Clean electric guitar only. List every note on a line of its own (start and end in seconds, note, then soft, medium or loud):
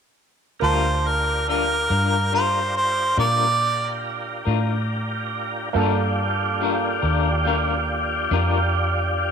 0.62 0.87 G3 medium
0.62 0.88 D4 medium
0.62 0.88 F4 medium
0.62 0.88 A#4 medium
1.48 1.73 G3 soft
1.48 1.74 D4 soft
1.48 1.74 F4 soft
1.48 1.74 A#4 medium
1.89 2.16 D4 soft
1.89 2.16 F4 soft
1.89 2.15 A#4 soft
2.32 2.58 G3 soft
2.32 2.58 D4 soft
2.32 2.59 F4 medium
2.32 2.59 A#4 soft
3.17 3.43 G3 medium
3.17 3.43 D4 medium
3.17 3.44 F4 medium
3.17 3.44 A#4 medium
4.45 4.73 D4 soft
4.45 4.72 F4 soft
4.45 4.71 A#4 soft
5.74 6.00 G3 medium
5.74 6.00 D4 medium
5.74 6.01 F4 medium
5.74 6.01 A#4 medium
6.60 6.86 G3 medium
6.60 6.86 D4 medium
6.60 6.87 F4 medium
6.60 6.87 A#4 medium
7.02 7.29 D4 soft
7.02 7.29 F4 soft
7.02 7.28 A#4 soft
7.45 7.71 G3 medium
7.45 7.72 D4 soft
7.45 7.72 F4 medium
7.45 7.72 A#4 medium
8.31 8.57 G3 medium
8.31 8.57 D4 medium
8.31 8.57 F4 medium
8.31 8.58 A#4 medium